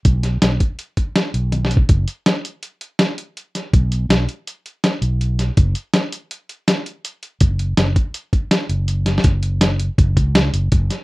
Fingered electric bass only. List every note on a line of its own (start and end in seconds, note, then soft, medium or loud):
0.05 0.37 B1 medium
0.42 0.58 B1 medium
1.34 1.82 B1 medium
1.89 2.05 F#1 medium
3.74 4.05 B1 medium
4.09 4.25 B1 medium
5.02 5.49 B1 medium
5.57 5.73 F#1 medium
7.41 7.73 F#1 medium
7.78 7.94 F#1 medium
8.69 9.17 F#1 medium
9.24 9.88 F#1 medium
9.98 10.14 F#1 medium
10.17 10.49 C#2 medium
10.53 10.70 F#1 medium
10.72 10.88 F#1 medium